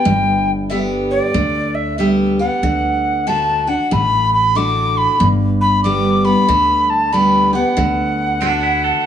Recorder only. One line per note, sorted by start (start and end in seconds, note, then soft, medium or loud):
0.00 0.51 G5 loud
0.70 0.79 E5 medium
1.11 1.76 D5 medium
1.75 1.98 E5 medium
1.98 2.08 E5 medium
2.40 3.29 F#5 medium
3.27 3.70 A5 loud
3.69 3.94 F#5 medium
3.93 4.33 B5 medium
4.33 4.58 B5 medium
4.56 4.99 D6 medium
4.97 5.27 B5 medium
5.61 5.83 B5 medium
5.84 6.26 D6 medium
6.25 6.91 B5 loud
6.90 7.14 A5 medium
7.13 7.54 B5 medium
7.54 9.06 F#5 medium